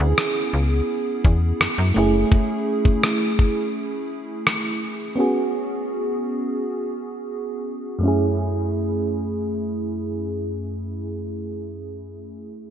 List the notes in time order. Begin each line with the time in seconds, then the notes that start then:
Already playing: B3 C#4 E4 G#4
0.00 D2
0.18 cross-stick
0.53 C#2
1.25 E2, kick
1.61 F#2, cross-stick
1.78 F#2
1.94 F#1 A3 C#4 E4
1.99 G#4
2.32 kick
2.85 kick
3.03 cross-stick
3.39 kick
4.47 cross-stick
5.16 B3 C#4 F#4
5.20 G#4
7.99 F#2 A3
8.03 C#4 E4
8.08 G#4